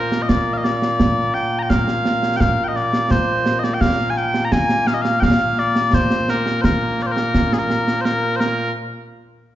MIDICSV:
0, 0, Header, 1, 3, 480
1, 0, Start_track
1, 0, Key_signature, -2, "major"
1, 0, Tempo, 705882
1, 675, Time_signature, 2, 2, 24, 8
1, 6495, End_track
2, 0, Start_track
2, 0, Title_t, "Bagpipes"
2, 0, Program_c, 0, 109
2, 0, Note_on_c, 0, 46, 89
2, 0, Note_on_c, 0, 58, 89
2, 0, Note_on_c, 0, 70, 93
2, 150, Note_off_c, 0, 70, 0
2, 150, Note_on_c, 0, 75, 73
2, 197, Note_off_c, 0, 75, 0
2, 197, Note_on_c, 0, 74, 93
2, 363, Note_off_c, 0, 74, 0
2, 363, Note_on_c, 0, 77, 69
2, 391, Note_off_c, 0, 77, 0
2, 391, Note_on_c, 0, 75, 69
2, 437, Note_off_c, 0, 75, 0
2, 437, Note_on_c, 0, 74, 98
2, 912, Note_off_c, 0, 74, 0
2, 912, Note_on_c, 0, 79, 96
2, 1081, Note_off_c, 0, 79, 0
2, 1081, Note_on_c, 0, 82, 79
2, 1106, Note_off_c, 0, 82, 0
2, 1106, Note_on_c, 0, 79, 79
2, 1155, Note_off_c, 0, 79, 0
2, 1155, Note_on_c, 0, 77, 100
2, 1609, Note_off_c, 0, 77, 0
2, 1609, Note_on_c, 0, 79, 98
2, 1637, Note_off_c, 0, 79, 0
2, 1637, Note_on_c, 0, 77, 98
2, 1797, Note_off_c, 0, 77, 0
2, 1797, Note_on_c, 0, 79, 69
2, 1824, Note_off_c, 0, 79, 0
2, 1824, Note_on_c, 0, 75, 69
2, 1876, Note_off_c, 0, 75, 0
2, 1876, Note_on_c, 0, 74, 97
2, 2114, Note_off_c, 0, 74, 0
2, 2114, Note_on_c, 0, 72, 95
2, 2441, Note_off_c, 0, 72, 0
2, 2441, Note_on_c, 0, 75, 68
2, 2473, Note_off_c, 0, 75, 0
2, 2473, Note_on_c, 0, 74, 100
2, 2543, Note_off_c, 0, 74, 0
2, 2543, Note_on_c, 0, 79, 86
2, 2592, Note_off_c, 0, 79, 0
2, 2592, Note_on_c, 0, 77, 112
2, 2788, Note_off_c, 0, 77, 0
2, 2788, Note_on_c, 0, 80, 80
2, 2837, Note_off_c, 0, 80, 0
2, 2837, Note_on_c, 0, 79, 104
2, 3025, Note_off_c, 0, 79, 0
2, 3025, Note_on_c, 0, 82, 82
2, 3075, Note_off_c, 0, 82, 0
2, 3075, Note_on_c, 0, 80, 105
2, 3313, Note_off_c, 0, 80, 0
2, 3313, Note_on_c, 0, 77, 100
2, 3359, Note_off_c, 0, 77, 0
2, 3359, Note_on_c, 0, 75, 87
2, 3412, Note_off_c, 0, 75, 0
2, 3412, Note_on_c, 0, 77, 100
2, 3537, Note_off_c, 0, 77, 0
2, 3537, Note_on_c, 0, 79, 109
2, 3560, Note_off_c, 0, 79, 0
2, 3560, Note_on_c, 0, 77, 109
2, 3801, Note_off_c, 0, 77, 0
2, 3801, Note_on_c, 0, 74, 103
2, 4041, Note_off_c, 0, 74, 0
2, 4041, Note_on_c, 0, 72, 100
2, 4282, Note_off_c, 0, 72, 0
2, 4282, Note_on_c, 0, 70, 94
2, 4497, Note_off_c, 0, 70, 0
2, 4497, Note_on_c, 0, 72, 86
2, 4520, Note_off_c, 0, 72, 0
2, 4520, Note_on_c, 0, 70, 86
2, 4775, Note_on_c, 0, 74, 64
2, 4776, Note_off_c, 0, 70, 0
2, 4803, Note_off_c, 0, 74, 0
2, 4803, Note_on_c, 0, 72, 64
2, 4838, Note_off_c, 0, 72, 0
2, 4838, Note_on_c, 0, 70, 88
2, 5124, Note_off_c, 0, 70, 0
2, 5124, Note_on_c, 0, 68, 63
2, 5160, Note_off_c, 0, 68, 0
2, 5160, Note_on_c, 0, 70, 86
2, 5447, Note_off_c, 0, 70, 0
2, 5447, Note_on_c, 0, 72, 92
2, 5474, Note_off_c, 0, 72, 0
2, 5474, Note_on_c, 0, 70, 92
2, 5685, Note_off_c, 0, 70, 0
2, 5685, Note_on_c, 0, 72, 89
2, 5712, Note_off_c, 0, 72, 0
2, 5712, Note_on_c, 0, 70, 89
2, 5937, Note_off_c, 0, 46, 0
2, 5937, Note_off_c, 0, 58, 0
2, 5937, Note_off_c, 0, 70, 0
2, 6495, End_track
3, 0, Start_track
3, 0, Title_t, "Drums"
3, 80, Note_on_c, 9, 38, 74
3, 148, Note_off_c, 9, 38, 0
3, 198, Note_on_c, 9, 35, 57
3, 198, Note_on_c, 9, 38, 102
3, 266, Note_off_c, 9, 35, 0
3, 266, Note_off_c, 9, 38, 0
3, 438, Note_on_c, 9, 38, 77
3, 506, Note_off_c, 9, 38, 0
3, 558, Note_on_c, 9, 38, 71
3, 626, Note_off_c, 9, 38, 0
3, 677, Note_on_c, 9, 35, 58
3, 677, Note_on_c, 9, 38, 90
3, 745, Note_off_c, 9, 35, 0
3, 745, Note_off_c, 9, 38, 0
3, 917, Note_on_c, 9, 38, 29
3, 985, Note_off_c, 9, 38, 0
3, 1157, Note_on_c, 9, 35, 59
3, 1157, Note_on_c, 9, 38, 108
3, 1225, Note_off_c, 9, 35, 0
3, 1225, Note_off_c, 9, 38, 0
3, 1276, Note_on_c, 9, 38, 72
3, 1344, Note_off_c, 9, 38, 0
3, 1397, Note_on_c, 9, 38, 82
3, 1465, Note_off_c, 9, 38, 0
3, 1514, Note_on_c, 9, 38, 73
3, 1582, Note_off_c, 9, 38, 0
3, 1635, Note_on_c, 9, 35, 64
3, 1635, Note_on_c, 9, 38, 106
3, 1703, Note_off_c, 9, 35, 0
3, 1703, Note_off_c, 9, 38, 0
3, 1876, Note_on_c, 9, 38, 31
3, 1944, Note_off_c, 9, 38, 0
3, 1993, Note_on_c, 9, 38, 80
3, 2061, Note_off_c, 9, 38, 0
3, 2113, Note_on_c, 9, 35, 60
3, 2113, Note_on_c, 9, 38, 107
3, 2181, Note_off_c, 9, 35, 0
3, 2181, Note_off_c, 9, 38, 0
3, 2352, Note_on_c, 9, 38, 85
3, 2420, Note_off_c, 9, 38, 0
3, 2472, Note_on_c, 9, 38, 70
3, 2540, Note_off_c, 9, 38, 0
3, 2590, Note_on_c, 9, 35, 62
3, 2590, Note_on_c, 9, 38, 100
3, 2658, Note_off_c, 9, 35, 0
3, 2658, Note_off_c, 9, 38, 0
3, 2833, Note_on_c, 9, 38, 31
3, 2901, Note_off_c, 9, 38, 0
3, 2953, Note_on_c, 9, 38, 79
3, 3021, Note_off_c, 9, 38, 0
3, 3073, Note_on_c, 9, 35, 57
3, 3073, Note_on_c, 9, 38, 99
3, 3141, Note_off_c, 9, 35, 0
3, 3141, Note_off_c, 9, 38, 0
3, 3191, Note_on_c, 9, 38, 70
3, 3259, Note_off_c, 9, 38, 0
3, 3311, Note_on_c, 9, 38, 83
3, 3379, Note_off_c, 9, 38, 0
3, 3433, Note_on_c, 9, 38, 72
3, 3501, Note_off_c, 9, 38, 0
3, 3551, Note_on_c, 9, 35, 63
3, 3551, Note_on_c, 9, 38, 98
3, 3619, Note_off_c, 9, 35, 0
3, 3619, Note_off_c, 9, 38, 0
3, 3794, Note_on_c, 9, 38, 31
3, 3862, Note_off_c, 9, 38, 0
3, 3915, Note_on_c, 9, 38, 74
3, 3983, Note_off_c, 9, 38, 0
3, 4034, Note_on_c, 9, 35, 59
3, 4034, Note_on_c, 9, 38, 104
3, 4102, Note_off_c, 9, 35, 0
3, 4102, Note_off_c, 9, 38, 0
3, 4152, Note_on_c, 9, 38, 74
3, 4220, Note_off_c, 9, 38, 0
3, 4274, Note_on_c, 9, 38, 80
3, 4342, Note_off_c, 9, 38, 0
3, 4394, Note_on_c, 9, 38, 67
3, 4462, Note_off_c, 9, 38, 0
3, 4515, Note_on_c, 9, 35, 62
3, 4515, Note_on_c, 9, 38, 99
3, 4583, Note_off_c, 9, 35, 0
3, 4583, Note_off_c, 9, 38, 0
3, 4756, Note_on_c, 9, 38, 31
3, 4824, Note_off_c, 9, 38, 0
3, 4874, Note_on_c, 9, 38, 75
3, 4942, Note_off_c, 9, 38, 0
3, 4994, Note_on_c, 9, 35, 62
3, 4994, Note_on_c, 9, 38, 98
3, 5062, Note_off_c, 9, 35, 0
3, 5062, Note_off_c, 9, 38, 0
3, 5116, Note_on_c, 9, 38, 70
3, 5184, Note_off_c, 9, 38, 0
3, 5237, Note_on_c, 9, 38, 74
3, 5305, Note_off_c, 9, 38, 0
3, 5356, Note_on_c, 9, 38, 69
3, 5424, Note_off_c, 9, 38, 0
3, 5476, Note_on_c, 9, 38, 84
3, 5544, Note_off_c, 9, 38, 0
3, 5715, Note_on_c, 9, 38, 85
3, 5783, Note_off_c, 9, 38, 0
3, 6495, End_track
0, 0, End_of_file